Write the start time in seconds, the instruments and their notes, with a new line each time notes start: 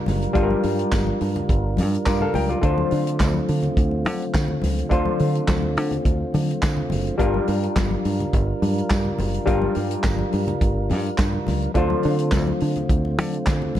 Already playing: clav G3 D4 F4 A#4, tonewheel organ G3 D4 F4 A#4
0.06 fingered electric bass F#1, snare, open hi-hat, high conga, low conga
0.22 closed hi-hat
0.33 fingered electric bass G1, clav G3 D4 F4 A4, kick, closed hi-hat
0.43 clav A#4
0.50 high conga
0.63 fingered electric bass G2, open hi-hat
0.79 closed hi-hat
0.92 fingered electric bass G1, kick, snare, clap, closed hi-hat, tambourine, muted conga, high conga
1.07 muted conga, high conga
1.21 fingered electric bass G2, open hi-hat
1.36 closed hi-hat, low conga
1.49 fingered electric bass G1, kick, closed hi-hat
1.77 fingered electric bass G2, open hi-hat, high conga
1.94 closed hi-hat
2.06 fingered electric bass G2, clav F4 A#4 D5, kick, snare, clap, closed hi-hat, tambourine
2.21 clav A4 F5, muted conga, low conga
2.34 fingered electric bass C#2, clav A#4 G5, open hi-hat, high conga, low conga
2.49 clav F4 D5, closed hi-hat
2.61 fingered electric bass D2, clav D3 D4 F4 C5, tonewheel organ D3 A3 C4, kick, closed hi-hat, muted conga
2.78 high conga
2.91 fingered electric bass D3, open hi-hat
3.07 closed hi-hat
3.19 fingered electric bass D2, kick, snare, clap, closed hi-hat, tambourine, high conga
3.34 high conga
3.48 fingered electric bass D3, open hi-hat
3.63 closed hi-hat, low conga
3.77 fingered electric bass D2, kick, closed hi-hat
3.91 muted conga
4.05 fingered electric bass D3, open hi-hat, high conga
4.22 closed hi-hat
4.34 fingered electric bass D3, kick, snare, clap, closed hi-hat, tambourine, muted conga
4.48 muted conga, low conga
4.62 fingered electric bass C#2, snare, open hi-hat, high conga, low conga
4.78 closed hi-hat
4.89 fingered electric bass D2, clav D3 D4 F4 C5, kick, closed hi-hat, muted conga
5.05 muted conga, high conga
5.19 fingered electric bass D3, open hi-hat
5.35 closed hi-hat
5.48 fingered electric bass D2, kick, snare, clap, closed hi-hat, tambourine, high conga
5.62 muted conga, high conga
5.77 fingered electric bass D3, open hi-hat
5.91 closed hi-hat, low conga
6.05 fingered electric bass D2, kick, closed hi-hat, muted conga
6.34 fingered electric bass D3, open hi-hat, high conga
6.51 closed hi-hat
6.62 fingered electric bass D3, kick, snare, clap, closed hi-hat, tambourine
6.77 low conga
6.90 fingered electric bass F#1, open hi-hat, high conga, low conga
7.07 closed hi-hat
7.18 fingered electric bass G1, clav G3 D4 F4 A#4, tonewheel organ G3 D4 A#4, kick, closed hi-hat, muted conga
7.34 high conga
7.48 fingered electric bass G2, open hi-hat
7.63 closed hi-hat
7.76 fingered electric bass G1, kick, snare, clap, closed hi-hat, tambourine, muted conga, high conga
7.91 muted conga, high conga
8.05 fingered electric bass G2, open hi-hat
8.20 closed hi-hat, low conga
8.33 fingered electric bass G1, kick, closed hi-hat, muted conga
8.62 fingered electric bass G2, open hi-hat, high conga
8.78 closed hi-hat
8.90 fingered electric bass G2, kick, snare, clap, closed hi-hat, tambourine
9.05 muted conga, low conga
9.19 fingered electric bass F#1, open hi-hat, high conga, low conga
9.34 closed hi-hat
9.46 fingered electric bass G1, clav G3 D4 F4 A#4, kick, closed hi-hat
9.62 high conga
9.75 fingered electric bass G2, open hi-hat
9.91 closed hi-hat
10.03 fingered electric bass G1, kick, snare, clap, closed hi-hat, tambourine, muted conga, high conga
10.19 muted conga, high conga
10.32 fingered electric bass G2, open hi-hat
10.47 closed hi-hat, low conga
10.61 fingered electric bass G1, kick, closed hi-hat
10.90 fingered electric bass G2, open hi-hat, high conga
11.06 closed hi-hat
11.18 fingered electric bass G2, kick, snare, clap, closed hi-hat, tambourine, muted conga
11.33 muted conga, low conga
11.47 fingered electric bass C#2, snare, open hi-hat, high conga, low conga
11.62 closed hi-hat
11.74 fingered electric bass D2, clav D3 D4 F4 C5, tonewheel organ D3 A3 C4 F4, kick, closed hi-hat
11.90 muted conga, high conga
12.03 fingered electric bass D3, open hi-hat
12.19 closed hi-hat
12.31 fingered electric bass D2, kick, snare, clap, closed hi-hat, tambourine, muted conga, high conga
12.47 muted conga, high conga
12.60 fingered electric bass D3, open hi-hat
12.75 closed hi-hat, low conga
12.89 fingered electric bass D2, kick, closed hi-hat
13.05 muted conga
13.18 fingered electric bass D3, open hi-hat, high conga
13.34 closed hi-hat
13.46 fingered electric bass D3, kick, snare, clap, closed hi-hat, tambourine
13.62 low conga
13.75 fingered electric bass C#2, snare, open hi-hat, high conga, low conga